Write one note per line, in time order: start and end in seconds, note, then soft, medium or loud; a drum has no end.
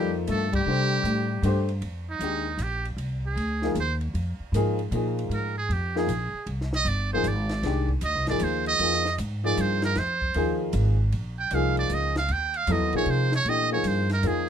0.00 0.26 F2 medium
0.00 0.48 F3 medium
0.00 0.15 G3 medium
0.00 0.48 A#3 medium
0.00 0.49 D#4 medium
0.00 0.16 G4 medium
0.00 0.49 A4 medium
0.27 0.65 G2 medium
0.27 0.51 A3 medium
0.27 0.52 A4 medium
0.27 hi-hat pedal medium
0.27 ride medium
0.52 1.65 G3 medium
0.52 1.66 G4 loud
0.52 kick medium
0.52 ride medium
0.66 1.03 C3 medium
0.66 1.25 A3 medium
0.66 1.26 D4 medium
0.66 1.26 G4 medium
0.66 1.27 C5 medium
1.03 1.42 A2 medium
1.03 hi-hat pedal soft
1.03 ride medium
1.42 1.81 G2 medium
1.42 1.67 A3 medium
1.42 1.67 D4 medium
1.42 1.67 G4 medium
1.42 1.68 C5 medium
1.42 hi-hat pedal medium
1.42 ride medium
1.69 ride soft
1.82 2.19 F2 medium
1.82 ride medium
2.10 2.64 D#4 medium
2.19 2.57 D#2 medium
2.19 2.44 D#3 medium
2.19 2.45 G#3 medium
2.19 2.45 D4 soft
2.19 hi-hat pedal medium
2.19 ride medium
2.24 2.45 G4 medium
2.58 2.96 A#1 medium
2.58 hi-hat pedal medium
2.58 ride medium
2.63 2.87 G4 medium
2.85 ride soft
2.97 3.35 C2 medium
2.97 ride medium
3.26 3.74 G#4 medium
3.36 3.74 D2 medium
3.36 ride medium
3.62 3.75 F3 medium
3.62 3.75 A#3 medium
3.62 3.75 D#4 medium
3.62 3.76 G#4 medium
3.62 snare soft
3.75 4.13 D#2 medium
3.75 hi-hat pedal soft
3.75 ride medium
3.80 3.94 C5 medium
4.01 ride soft
4.14 4.38 F2 medium
4.14 ride medium
4.39 muted upright bass stroke soft
4.52 4.90 G#2 medium
4.52 4.77 F3 medium
4.52 4.77 A#3 medium
4.52 hi-hat pedal medium
4.52 ride medium
4.56 4.78 D#4 medium
4.56 4.78 G#4 medium
4.79 ride soft
4.91 5.29 A#2 medium
4.91 5.52 F3 medium
4.91 5.52 A#3 soft
4.91 5.53 D#4 medium
4.91 hi-hat pedal medium
4.91 ride medium
4.95 5.53 G#4 medium
5.19 ride soft
5.29 5.68 G#2 medium
5.29 ride medium
5.34 5.56 A#4 medium
5.58 5.74 G#4 medium
5.69 6.07 F2 medium
5.69 6.00 G4 medium
5.69 ride medium
5.96 6.07 F3 medium
5.96 6.08 A#3 medium
5.96 6.08 D#4 medium
5.96 6.08 G#4 medium
5.96 6.49 G#4 medium
5.96 snare soft
6.07 6.32 A#1 medium
6.07 hi-hat pedal soft
6.07 ride medium
6.33 muted upright bass stroke soft
6.46 6.84 C2 medium
6.46 ride medium
6.61 snare soft
6.73 6.90 D#5 loud
6.73 snare soft
6.85 7.23 G1 medium
6.85 7.13 D5 medium
6.85 hi-hat pedal medium
6.85 ride medium
7.13 7.24 F3 medium
7.13 7.25 A#3 medium
7.13 7.25 D#4 medium
7.13 7.25 G#4 medium
7.13 7.29 C5 medium
7.24 7.62 G#1 medium
7.24 hi-hat pedal medium
7.24 ride medium
7.28 7.91 D5 medium
7.49 snare soft
7.49 ride soft
7.62 8.01 C2 medium
7.62 7.87 D#3 medium
7.62 7.88 G#3 medium
7.62 7.88 D4 medium
7.62 snare soft
7.62 ride medium
7.67 7.88 G4 medium
7.89 kick medium
8.01 8.15 D2 medium
8.01 8.27 D#5 medium
8.01 hi-hat pedal medium
8.01 ride medium
8.15 8.27 C2 medium
8.27 8.40 G#1 medium
8.27 8.78 F3 medium
8.27 8.78 A#3 medium
8.27 8.78 D#4 medium
8.27 8.79 G#4 medium
8.27 8.45 D5 medium
8.27 snare soft
8.27 ride soft
8.39 8.79 D#2 medium
8.39 hi-hat pedal medium
8.39 ride medium
8.44 8.67 C5 medium
8.66 9.16 D#5 loud
8.66 ride soft
8.79 9.17 F2 medium
8.79 9.03 F3 medium
8.79 9.03 A#3 medium
8.79 9.04 D#4 medium
8.79 9.04 G#4 medium
8.79 ride medium
8.93 snare soft
9.05 snare soft
9.18 9.56 G#2 medium
9.18 hi-hat pedal medium
9.18 ride medium
9.44 9.93 F3 medium
9.44 9.94 A#3 medium
9.44 9.94 D#4 medium
9.44 9.94 G#4 medium
9.44 9.62 D5 loud
9.57 9.95 G2 medium
9.57 9.85 C5 medium
9.57 hi-hat pedal medium
9.57 ride medium
9.82 10.00 A#4 medium
9.82 snare soft
9.82 ride soft
9.95 10.34 F2 medium
9.95 10.62 C5 medium
9.95 snare soft
9.95 ride medium
10.22 kick medium
10.34 10.73 D#2 medium
10.34 10.95 F3 medium
10.34 10.95 A#3 medium
10.34 10.95 D#4 medium
10.34 10.95 G#4 medium
10.34 ride medium
10.73 11.11 G#1 medium
10.73 hi-hat pedal medium
10.73 ride medium
11.12 11.50 A#1 medium
11.12 ride medium
11.39 11.56 G5 medium
11.51 11.89 C2 medium
11.51 12.12 F3 medium
11.51 12.12 A#3 medium
11.51 12.12 D#4 medium
11.51 hi-hat pedal medium
11.51 ride medium
11.55 12.13 G#4 medium
11.55 11.78 F5 medium
11.77 11.95 D5 loud
11.77 ride soft
11.90 12.28 C#2 medium
11.90 hi-hat pedal medium
11.90 ride medium
11.94 12.17 D#5 medium
12.16 12.34 F5 medium
12.16 snare medium
12.16 ride soft
12.28 12.66 D#2 medium
12.28 ride medium
12.32 12.58 G5 medium
12.54 12.74 F5 medium
12.54 ride soft
12.67 12.80 F2 medium
12.67 12.91 F#3 medium
12.67 12.92 B3 medium
12.67 12.92 E4 medium
12.67 12.92 A4 medium
12.67 hi-hat pedal medium
12.67 ride medium
12.72 12.96 D#5 medium
12.80 12.92 D#2 medium
12.92 13.05 A#1 medium
12.92 13.28 F3 medium
12.92 13.28 A#3 medium
12.92 13.29 D#4 medium
12.92 13.29 G#4 medium
12.92 ride soft
12.96 13.12 C#5 medium
13.06 13.44 C3 medium
13.06 ride medium
13.11 13.34 C5 medium
13.32 13.51 C#5 loud
13.32 snare medium
13.44 13.83 A#2 medium
13.44 13.70 E3 medium
13.44 13.70 A3 medium
13.44 ride medium
13.49 13.70 D4 soft
13.49 13.71 G4 medium
13.49 13.72 D#5 loud
13.71 14.05 F3 medium
13.71 14.06 A#3 medium
13.71 14.06 D#4 medium
13.71 14.06 G#4 medium
13.71 13.89 C#5 medium
13.83 14.22 G2 medium
13.83 hi-hat pedal medium
13.83 ride medium
13.88 14.12 C5 medium
14.10 14.29 A#4 medium
14.10 snare soft
14.10 ride soft
14.23 14.49 F2 medium
14.23 14.47 F3 medium
14.23 14.47 A#3 medium
14.23 14.48 D#4 medium
14.23 14.48 G#4 medium
14.23 hi-hat pedal medium
14.23 ride medium
14.27 14.49 G#4 medium